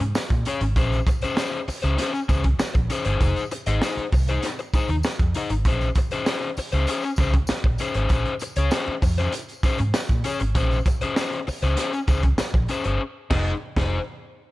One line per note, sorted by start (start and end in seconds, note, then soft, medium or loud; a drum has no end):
0.00 0.12 G#2 medium
0.00 muted overdriven electric guitar stroke soft
0.00 closed hi-hat medium
0.15 muted overdriven electric guitar stroke soft
0.15 snare loud
0.15 tambourine loud
0.30 0.43 A#2 loud
0.30 kick loud
0.30 closed hi-hat soft
0.45 0.62 C#4 medium
0.45 0.62 G#4 medium
0.45 0.62 C#5 medium
0.45 closed hi-hat loud
0.45 tambourine medium
0.61 0.73 G#1 medium
0.61 muted overdriven electric guitar stroke soft
0.61 closed hi-hat medium
0.76 1.00 A#1 loud
0.76 0.97 C#4 medium
0.76 0.97 G#4 loud
0.76 0.98 C5 loud
0.76 kick medium
0.76 closed hi-hat medium
0.76 tambourine soft
0.92 closed hi-hat soft
0.92 tambourine soft
1.07 muted overdriven electric guitar stroke soft
1.07 kick loud
1.07 closed hi-hat medium
1.07 tambourine medium
1.21 1.36 C#4 medium
1.21 1.37 G#4 medium
1.21 1.37 C5 medium
1.21 muted fingered electric bass stroke soft
1.21 closed hi-hat medium
1.21 tambourine soft
1.37 1.58 C#4 medium
1.37 1.58 G#4 loud
1.37 1.59 C5 loud
1.37 snare loud
1.37 tambourine medium
1.53 closed hi-hat soft
1.68 muted fingered electric bass stroke medium
1.68 muted overdriven electric guitar stroke soft
1.68 open hi-hat medium
1.68 tambourine medium
1.82 1.95 C#2 loud
1.82 1.97 C#4 medium
1.82 1.97 G#4 medium
1.82 1.98 C5 medium
1.82 closed hi-hat soft
1.82 tambourine soft
1.98 2.19 C#4 loud
1.98 2.13 G#4 medium
1.98 2.12 C5 loud
1.98 snare soft
1.98 closed hi-hat medium
1.98 tambourine medium
2.13 muted overdriven electric guitar stroke soft
2.13 closed hi-hat soft
2.13 tambourine soft
2.29 2.53 C#2 loud
2.29 2.45 C#4 medium
2.29 2.44 G#4 medium
2.29 2.43 C5 medium
2.29 kick medium
2.29 closed hi-hat medium
2.29 tambourine medium
2.44 muted overdriven electric guitar stroke medium
2.44 kick medium
2.44 closed hi-hat soft
2.59 muted overdriven electric guitar stroke soft
2.59 muted fingered electric bass stroke medium
2.59 snare loud
2.59 tambourine loud
2.74 2.87 A#1 loud
2.74 muted overdriven electric guitar stroke soft
2.74 kick loud
2.74 closed hi-hat soft
2.90 3.06 C#4 medium
2.90 3.05 G#4 medium
2.90 3.04 C5 medium
2.90 closed hi-hat medium
2.90 tambourine medium
3.05 3.18 G1 medium
3.05 3.20 C#4 medium
3.05 3.20 G#4 medium
3.05 3.21 C5 medium
3.05 closed hi-hat medium
3.20 3.33 F1 loud
3.20 3.41 D#4 medium
3.20 3.42 G#4 loud
3.20 3.42 C5 loud
3.20 kick medium
3.20 closed hi-hat medium
3.20 tambourine soft
3.36 closed hi-hat soft
3.36 tambourine soft
3.51 muted overdriven electric guitar stroke soft
3.51 closed hi-hat medium
3.51 tambourine medium
3.66 3.79 G#1 medium
3.66 3.81 D#4 medium
3.66 3.82 G#4 medium
3.66 3.83 D#5 medium
3.66 closed hi-hat medium
3.82 4.02 D#4 medium
3.82 4.03 G#4 loud
3.82 4.03 C5 loud
3.82 snare loud
3.82 tambourine medium
3.97 muted fingered electric bass stroke medium
3.97 closed hi-hat soft
4.12 4.36 C2 medium
4.12 muted overdriven electric guitar stroke soft
4.12 kick loud
4.12 open hi-hat medium
4.12 tambourine medium
4.27 4.45 D#4 medium
4.27 4.45 G#4 medium
4.27 4.44 C5 medium
4.27 closed hi-hat soft
4.27 tambourine soft
4.43 snare soft
4.43 closed hi-hat medium
4.43 tambourine medium
4.59 muted overdriven electric guitar stroke soft
4.59 closed hi-hat soft
4.59 tambourine soft
4.74 4.94 D#4 medium
4.74 4.90 G#4 medium
4.74 4.89 C5 medium
4.74 muted fingered electric bass stroke soft
4.74 kick loud
4.74 closed hi-hat medium
4.74 tambourine medium
4.89 5.01 D#2 medium
4.89 muted overdriven electric guitar stroke soft
4.89 closed hi-hat medium
5.03 muted overdriven electric guitar stroke soft
5.03 snare loud
5.03 tambourine loud
5.19 5.31 F2 medium
5.19 kick loud
5.19 closed hi-hat soft
5.34 5.51 D#4 medium
5.34 5.51 G#4 medium
5.34 5.51 D#5 medium
5.34 closed hi-hat medium
5.34 tambourine medium
5.50 5.65 G#1 medium
5.50 muted overdriven electric guitar stroke soft
5.50 closed hi-hat medium
5.65 5.89 A#1 loud
5.65 5.87 C#4 medium
5.65 5.87 G#4 loud
5.65 5.87 C5 loud
5.65 kick medium
5.65 closed hi-hat medium
5.65 tambourine soft
5.81 closed hi-hat soft
5.81 tambourine soft
5.95 muted overdriven electric guitar stroke soft
5.95 kick loud
5.95 closed hi-hat medium
5.95 tambourine medium
6.11 6.25 C#4 soft
6.11 6.26 G#4 medium
6.11 6.27 C5 medium
6.11 muted fingered electric bass stroke soft
6.11 closed hi-hat medium
6.11 tambourine soft
6.26 6.47 C#4 medium
6.26 6.48 G#4 loud
6.26 6.48 C5 loud
6.26 snare loud
6.26 tambourine medium
6.42 closed hi-hat soft
6.57 muted fingered electric bass stroke medium
6.57 muted overdriven electric guitar stroke medium
6.57 open hi-hat medium
6.57 tambourine medium
6.71 6.85 C#2 medium
6.71 6.88 C#4 medium
6.71 6.89 G#4 medium
6.71 6.89 C5 medium
6.71 closed hi-hat soft
6.71 tambourine soft
6.87 7.09 C#4 medium
6.87 7.04 G#4 loud
6.87 7.03 C5 medium
6.87 closed hi-hat medium
6.87 tambourine medium
7.02 muted overdriven electric guitar stroke medium
7.02 closed hi-hat soft
7.02 tambourine soft
7.16 7.42 C#2 loud
7.16 7.35 C#4 medium
7.16 7.34 G#4 medium
7.16 kick loud
7.16 closed hi-hat medium
7.16 tambourine medium
7.21 7.34 C5 medium
7.33 muted overdriven electric guitar stroke medium
7.33 kick loud
7.33 closed hi-hat medium
7.47 muted fingered electric bass stroke soft
7.47 muted overdriven electric guitar stroke soft
7.47 snare loud
7.47 tambourine loud
7.64 7.76 A#1 loud
7.64 muted overdriven electric guitar stroke medium
7.64 kick loud
7.78 7.96 C#4 medium
7.78 7.96 G#4 medium
7.78 7.95 C5 medium
7.78 closed hi-hat medium
7.78 tambourine medium
7.94 8.07 G#1 loud
7.94 8.10 C#4 medium
7.94 8.11 G#4 medium
7.94 8.12 C5 medium
7.94 closed hi-hat medium
8.09 8.22 A#1 loud
8.09 8.31 C#4 loud
8.09 8.32 G#4 loud
8.09 kick loud
8.09 closed hi-hat medium
8.09 tambourine soft
8.13 8.32 C5 loud
8.25 closed hi-hat soft
8.39 muted overdriven electric guitar stroke medium
8.39 closed hi-hat medium
8.39 tambourine medium
8.56 8.68 C#2 medium
8.56 8.70 C#4 medium
8.56 8.71 G#4 medium
8.56 8.73 C#5 medium
8.56 closed hi-hat medium
8.56 tambourine soft
8.71 8.92 C#4 loud
8.71 8.93 G#4 loud
8.71 8.93 C5 loud
8.71 snare loud
8.71 tambourine medium
8.88 muted fingered electric bass stroke medium
9.02 9.26 F2 loud
9.02 muted overdriven electric guitar stroke medium
9.02 kick medium
9.02 open hi-hat medium
9.02 tambourine medium
9.18 9.32 C#4 medium
9.18 9.33 G#4 medium
9.18 9.33 C5 medium
9.18 closed hi-hat soft
9.18 tambourine soft
9.32 muted overdriven electric guitar stroke soft
9.32 closed hi-hat medium
9.32 tambourine medium
9.49 closed hi-hat soft
9.49 tambourine soft
9.63 9.80 C#4 medium
9.63 9.79 G#4 medium
9.63 9.78 C5 medium
9.63 muted fingered electric bass stroke medium
9.63 kick loud
9.63 closed hi-hat medium
9.63 tambourine medium
9.78 9.91 G#2 medium
9.78 muted overdriven electric guitar stroke soft
9.78 closed hi-hat medium
9.94 muted overdriven electric guitar stroke soft
9.94 snare loud
9.94 tambourine loud
10.09 10.21 A#2 loud
10.09 kick loud
10.09 closed hi-hat soft
10.24 10.41 C#4 medium
10.24 10.41 G#4 medium
10.24 10.40 C#5 medium
10.24 closed hi-hat medium
10.24 tambourine medium
10.40 10.55 G#1 medium
10.40 muted overdriven electric guitar stroke medium
10.40 closed hi-hat medium
10.55 10.79 A#1 loud
10.55 10.76 C#4 medium
10.55 10.76 G#4 medium
10.55 10.77 C5 medium
10.55 kick medium
10.55 closed hi-hat medium
10.55 tambourine medium
10.71 closed hi-hat soft
10.71 tambourine soft
10.86 muted overdriven electric guitar stroke soft
10.86 kick loud
10.86 closed hi-hat medium
10.86 tambourine medium
11.01 11.16 C#4 medium
11.01 11.17 G#4 medium
11.01 11.17 C5 medium
11.01 muted fingered electric bass stroke soft
11.01 closed hi-hat medium
11.16 11.37 C#4 medium
11.16 11.38 G#4 loud
11.16 11.38 C5 loud
11.16 snare loud
11.16 tambourine medium
11.32 closed hi-hat soft
11.47 muted overdriven electric guitar stroke soft
11.47 muted fingered electric bass stroke medium
11.47 open hi-hat medium
11.47 tambourine medium
11.62 11.74 C#2 medium
11.62 11.77 C#4 medium
11.62 11.78 G#4 medium
11.62 11.79 C5 medium
11.62 closed hi-hat medium
11.62 tambourine soft
11.77 11.98 C#4 medium
11.77 11.93 G#4 medium
11.77 11.92 C5 loud
11.77 snare soft
11.77 closed hi-hat medium
11.77 tambourine medium
11.93 muted overdriven electric guitar stroke medium
11.93 closed hi-hat soft
11.93 tambourine soft
12.08 12.32 C#2 medium
12.08 12.24 C#4 medium
12.08 12.23 G#4 medium
12.08 12.22 C5 medium
12.08 kick loud
12.08 closed hi-hat medium
12.08 tambourine medium
12.23 muted overdriven electric guitar stroke soft
12.23 kick loud
12.23 closed hi-hat soft
12.38 muted overdriven electric guitar stroke soft
12.38 muted fingered electric bass stroke medium
12.38 snare loud
12.38 tambourine loud
12.54 12.66 A#1 loud
12.54 muted overdriven electric guitar stroke soft
12.54 kick loud
12.68 12.85 C#4 medium
12.68 12.85 G#4 medium
12.68 12.84 C5 medium
12.68 closed hi-hat medium
12.68 tambourine medium
12.84 12.97 G1 medium
12.84 13.01 C#4 soft
12.84 13.01 G#4 medium
12.84 13.00 C5 medium
12.84 closed hi-hat soft
13.30 13.52 F1 loud
13.30 13.52 D#4 loud
13.30 13.52 G#4 loud
13.30 13.51 D#5 loud
13.30 kick loud
13.30 snare loud
13.30 crash medium
13.77 13.98 F1 loud
13.77 13.98 D#4 loud
13.77 13.98 G#4 loud
13.77 13.99 C5 loud
13.77 kick loud
13.77 snare loud